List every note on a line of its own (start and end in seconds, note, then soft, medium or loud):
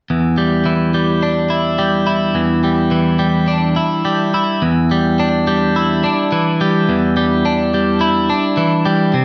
0.10 2.34 E2 soft
0.38 0.94 G3 soft
0.66 2.91 E3 soft
0.94 1.78 G3 soft
1.23 2.64 D4 soft
1.50 2.05 E4 soft
1.78 2.63 G3 medium
2.07 3.49 E4 soft
2.35 3.77 E2 medium
2.64 3.18 G3 soft
2.91 4.33 E3 soft
3.19 4.04 G3 soft
3.48 4.62 D4 soft
3.76 4.33 E4 soft
4.05 4.62 G3 soft
4.34 4.62 E4 soft
4.62 6.04 E2 soft
4.91 5.47 G3 soft
5.20 6.03 D4 soft
5.47 6.60 G3 soft
5.76 7.49 E4 soft
6.04 7.44 D4 soft
6.32 8.33 E3 medium
6.61 7.16 G3 soft
6.89 8.30 E2 soft
7.17 7.73 G3 soft
7.46 8.28 D4 soft
7.74 8.84 G3 soft
8.01 9.14 E4 medium
8.30 9.15 D4 medium
8.57 9.14 E3 medium
8.85 9.14 G3 medium
9.14 9.25 C3 medium